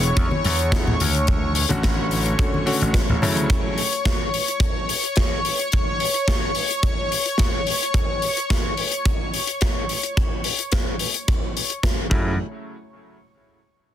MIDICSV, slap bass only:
0, 0, Header, 1, 2, 480
1, 0, Start_track
1, 0, Tempo, 555556
1, 1107, Time_signature, 4, 2, 24, 8
1, 12050, End_track
2, 0, Start_track
2, 0, Title_t, "Slap bass"
2, 0, Program_c, 0, 36
2, 0, Note_on_c, 0, 28, 86
2, 97, Note_off_c, 0, 28, 0
2, 146, Note_on_c, 0, 40, 93
2, 237, Note_off_c, 0, 40, 0
2, 389, Note_on_c, 0, 40, 101
2, 817, Note_off_c, 0, 40, 0
2, 867, Note_on_c, 0, 38, 80
2, 1417, Note_off_c, 0, 38, 0
2, 1473, Note_on_c, 0, 33, 87
2, 2015, Note_off_c, 0, 33, 0
2, 2433, Note_on_c, 0, 33, 87
2, 2602, Note_off_c, 0, 33, 0
2, 2674, Note_on_c, 0, 33, 80
2, 2788, Note_off_c, 0, 33, 0
2, 2788, Note_on_c, 0, 42, 91
2, 2917, Note_off_c, 0, 42, 0
2, 2917, Note_on_c, 0, 38, 102
2, 2997, Note_off_c, 0, 38, 0
2, 10464, Note_on_c, 0, 42, 91
2, 10688, Note_off_c, 0, 42, 0
2, 12050, End_track
0, 0, End_of_file